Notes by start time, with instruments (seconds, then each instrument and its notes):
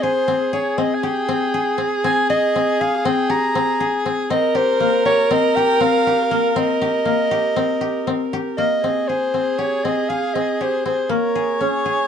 Already playing: koto C4 A#4, viola G#4
0.03 koto G#4, soprano saxophone C5
0.28 koto C4
0.53 koto G#4, soprano saxophone C#5
0.78 koto C4, soprano saxophone D#5
0.95 soprano saxophone G#5
1.03 koto G4, soprano saxophone G5
1.29 koto C4
1.54 koto G#4
1.78 koto C4
2.04 koto C4, soprano saxophone G#5
2.30 koto G#4, soprano saxophone D#5
2.56 koto C4
2.81 koto G#4, soprano saxophone F5
3.05 koto C4, soprano saxophone G5
3.30 koto G4, soprano saxophone A#5
3.55 koto C4
3.80 koto G#4
4.06 koto C4
4.30 koto C4, viola A#4, soprano saxophone D#5
4.55 koto G4, soprano saxophone C5
4.80 koto A#3
5.05 koto G4, soprano saxophone C#5
5.31 koto C4, soprano saxophone D#5
5.56 koto G4, soprano saxophone G5
5.80 koto C4, soprano saxophone F5
6.07 koto G4
6.31 koto A#3
6.50 soprano saxophone F5
6.56 koto C4, soprano saxophone D#5
6.81 koto G4
7.05 koto A#3
7.31 koto G4
7.56 koto C4
7.81 koto G4
8.07 koto C4
8.33 koto G4
8.57 koto A#3, soprano saxophone D#5
8.82 koto C4, viola G#4
9.08 koto G#4, soprano saxophone C5
9.34 koto C4
9.58 koto G4, soprano saxophone C#5
9.84 koto C4, soprano saxophone D#5
10.09 koto G#4, soprano saxophone F5
10.34 koto C4, soprano saxophone D#5
10.61 koto G4, soprano saxophone C5
10.85 koto C4, soprano saxophone C5
11.09 koto A#3, soprano saxophone A#4, viola C#5
11.35 koto G#4
11.61 koto C#4, soprano saxophone G#4
11.85 koto G#4